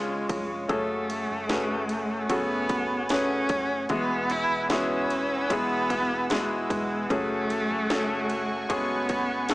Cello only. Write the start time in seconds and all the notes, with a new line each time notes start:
Already playing: G#3
0.72 A3
2.30 B3
3.11 C#4
3.92 B3
4.31 E4
4.71 C#4
5.51 B3
6.30 G#3
6.38 A3
6.45 G#3
7.11 A3
8.71 B3
9.50 A3